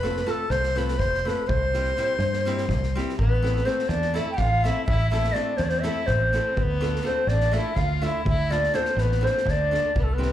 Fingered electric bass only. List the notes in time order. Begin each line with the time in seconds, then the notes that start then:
Already playing: F1
0.50 C2
0.99 F1
1.49 C2
2.19 G2
2.68 C2
3.19 A1
3.89 E2
4.40 A1
4.89 A1
5.59 E2
6.09 A1
6.57 D2
7.27 A1
7.76 D2
8.25 D2
8.97 A1
9.45 D2
9.95 C2